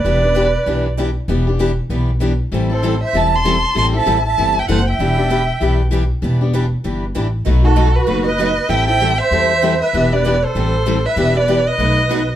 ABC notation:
X:1
M:4/4
L:1/8
Q:"Swing" 1/4=194
K:Em
V:1 name="Violin"
d4- d z3 | z8 | z c2 e a c'3 | c' a2 a2 g f g- |
g4- g z3 | z8 | z A2 B2 ^d3 | g g2 e4 e- |
e d2 c4 e- | e d2 ^d4 z |]
V:2 name="Accordion"
B4- B z3 | z8 | z A2 c e a3 | a e2 e2 e c e- |
e4- e z3 | z8 | z F2 F2 B3 | e e2 c4 B- |
B B2 A4 B- | B B2 B4 z |]
V:3 name="Steel-string acoustic guitar"
[E,G,DEB] z [E,G,DEB] z [E,G,DEB] z [E,G,DEB] z | [E,G,DEB] z [E,G,DEB] z [E,G,DEB] z [E,G,DEB] z | [E,G,CEA] z [E,G,CEA] z [E,G,CEA] z [E,G,CEA] z | [E,G,CEA] z [E,G,CEA] z [E,G,CEA] z [E,G,CEA] z |
[E,G,DEB] z [E,G,DEB] z [E,G,DEB] z [E,G,DEB] z | [E,G,DEB] z [E,G,DEB] z [E,G,DEB] z [E,G,DEB] z | [B,,F,A,^DFB] z [B,,F,A,DFB] z [B,,F,A,DFB] z [B,,F,A,DFB] z | [E,G,CEA] z [E,G,CEA] z [E,G,CEA] z [E,G,CEA] z |
[E,G,DEB] z [E,G,DEB] z [E,G,CEA] z [E,G,CEA] z | [E,G,DEB] z [E,G,DEB] z [B,,F,A,^DFB] z [B,,F,A,DFB] z |]
V:4 name="Steel-string acoustic guitar"
[E,B,DG] [B,DG] [E,B,DG] z [E,B,DG] z [E,B,DG] z | [E,B,DG] [B,DG] [E,B,DG] z [E,B,DG] z [E,B,DG] z | [E,G,CEA] [CEA] [E,G,CEA] z [E,G,CEA] z [E,G,CEA] z | [E,G,CEA] [CEA] [E,G,CEA] z [E,G,CEA] z [E,G,CEA] z |
[E,B,DG] [B,DG] [E,B,DG] z [E,B,DG] z [E,B,DG] z | [E,B,DG] [B,DG] [E,B,DG] z [E,B,DG] z [E,B,DG] z | [B,,F,A,^DF] [A,DF] [B,,F,A,DF] z [B,,F,A,DF] z [B,,F,A,DF] z | [E,G,CEA] [CEA] [E,G,CEA] z [E,G,CEA] z [E,G,CEA] z |
[E,B,DG] [B,DG] [E,B,DG] z [E,G,CEA] z [E,G,CEA] z | [E,B,DG] [B,DG] [E,B,DG] z [B,,F,A,^DF] z [B,,F,A,DF] z |]
V:5 name="Upright bass" clef=bass
E,,,4 B,,,4 | E,,,4 B,,,4 | A,,,4 E,,,4 | A,,,2 A,,,2 G,,,2 F,,,2 |
E,,,4 B,,,4 | E,,,4 G,,,2 A,,,2 | B,,,4 F,,,4 | A,,,4 E,,4 |
E,,,4 A,,,4 | E,,,4 B,,,4 |]